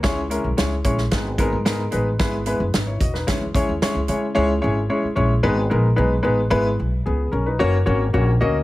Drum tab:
HH |x-x-x-x-x-x-x-x-|x-x-x-x-x-x-x-x-|----------------|----------------|
SD |o---o--oo---o---|o---o--oo---o---|----------------|----------------|
BD |o-----o-o-o-----|o-----o-o-o-----|----------------|----------------|